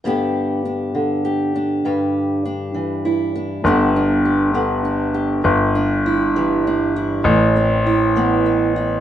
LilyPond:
<<
  \new Staff \with { instrumentName = "Steel-string acoustic guitar" } { \time 6/8 \key g \major \tempo 4. = 67 << { <d b d' g'>4 d'4 g'8 d'8 | g4 d'4 e'8 d'8 | <d b d' g'>8 d'8 g'8 b8 d'8 g'8 | r8 d'8 e'8 g8 d'8 e'8~ |
e'8 c'8 e'8 b8 c'8 e'8 | } \\ { g,4. d4. | g,4. e4. | g,4. d4. | g,4. e4. |
a,4. e4. | } >> }
  \new Staff \with { instrumentName = "Grand piano" } { \clef bass \time 6/8 \key g \major r2. | r2. | g,,2. | g,,2. |
a,,2. | }
>>